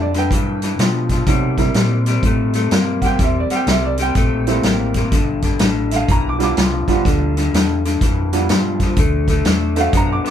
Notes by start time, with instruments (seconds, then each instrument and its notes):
Already playing: fingered electric bass F2, clean electric guitar G2 D3, upright piano G3 B3 D4 F4
0.02 upright piano D5
0.14 clean electric guitar G2 D3, upright piano B4, snare, closed hi-hat
0.18 upright piano G5
0.30 fingered electric bass G2, clean electric guitar G2 E3, kick, closed hi-hat
0.62 clean electric guitar G2 E3, snare, closed hi-hat
0.78 clean electric guitar G2 F3, fingered electric bass B2, snare, closed hi-hat
1.09 clean electric guitar G2 F3, kick, snare, closed hi-hat
1.26 fingered electric bass C3, clean electric guitar C3 G3, upright piano F#3 A3 B3 D#4, kick, snare, closed hi-hat
1.58 clean electric guitar C3 G3, upright piano G3 C4 E4 A#4, kick, snare, closed hi-hat
1.74 fingered electric bass A#2, clean electric guitar C3 G3, snare, closed hi-hat
2.06 clean electric guitar C3 G3, snare, closed hi-hat
2.23 fingered electric bass A2, clean electric guitar C3 A3, kick, closed hi-hat
2.53 clean electric guitar C3 A3, snare, closed hi-hat
2.71 fingered electric bass G2, clean electric guitar C3 A#3, snare, closed hi-hat
3.01 clean electric guitar C3 A#3, upright piano F#5, kick, snare, closed hi-hat
3.06 upright piano G5
3.19 fingered electric bass E2, clean electric guitar C3 G3, kick, snare, closed hi-hat
3.24 upright piano E5
3.40 upright piano D5
3.50 clean electric guitar C3 G3, upright piano F#5, muted fingered electric bass stroke, snare, closed hi-hat
3.56 upright piano G5
3.66 fingered electric bass C2, clean electric guitar C3 G3, snare, closed hi-hat
3.71 upright piano E5
3.85 upright piano D5
3.97 clean electric guitar C3 G3, snare, closed hi-hat
4.02 upright piano G5
4.15 fingered electric bass A#1, clean electric guitar C3 A3, kick, snare, closed hi-hat
4.47 clean electric guitar C3 A3, upright piano G3 A#3 C4 E4, snare, closed hi-hat
4.63 fingered electric bass A1, clean electric guitar C3 A#3, snare, closed hi-hat
4.94 clean electric guitar C3 A#3, kick, snare, closed hi-hat
5.12 fingered electric bass G1, clean electric guitar G2 D3, kick, snare, closed hi-hat
5.42 clean electric guitar G2 D3, kick, snare, closed hi-hat
5.59 fingered electric bass A1, snare, closed hi-hat
5.63 clean electric guitar G2 D3
5.91 clean electric guitar G2 D3, upright piano E5, snare, closed hi-hat
5.96 upright piano F5
6.08 fingered electric bass B1, clean electric guitar G2 E3, upright piano A#5, kick, closed hi-hat
6.29 upright piano D6
6.38 clean electric guitar G2 E3, upright piano G3 B3 D4 F4, snare, closed hi-hat
6.43 upright piano D6
6.57 fingered electric bass C2, clean electric guitar G2 F3, snare, closed hi-hat
6.87 clean electric guitar G2 F3, upright piano G3 B3 D4 F4, muted fingered electric bass stroke, kick, snare, closed hi-hat
7.05 fingered electric bass D2, clean electric guitar G2 D3, kick, snare, closed hi-hat
7.37 clean electric guitar G2 D3, snare, closed hi-hat
7.53 fingered electric bass E2, clean electric guitar G2 D3, snare, closed hi-hat
7.85 clean electric guitar G2 D3, snare, closed hi-hat
8.00 fingered electric bass F2, clean electric guitar G2 E3, kick, snare, closed hi-hat
8.33 clean electric guitar G2 E3, upright piano G3 B3 D4 F4, snare, closed hi-hat
8.49 fingered electric bass G2, clean electric guitar G2 F3, snare, closed hi-hat
8.80 clean electric guitar G2 F3, kick, snare, closed hi-hat
8.96 fingered electric bass D2, clean electric guitar D3 A3, kick, closed hi-hat
9.28 clean electric guitar D3 A3, kick, snare, closed hi-hat
9.45 fingered electric bass E2, clean electric guitar D3 A3, snare, closed hi-hat
9.76 clean electric guitar D3 A3, upright piano A3 C4 D4 F#4 E5, snare, closed hi-hat
9.80 upright piano F5
9.92 fingered electric bass F#2, clean electric guitar D3 B3, kick, closed hi-hat
9.97 upright piano A#5
10.12 upright piano D6
10.24 clean electric guitar D3 B3, upright piano D6, muted fingered electric bass stroke, snare, closed hi-hat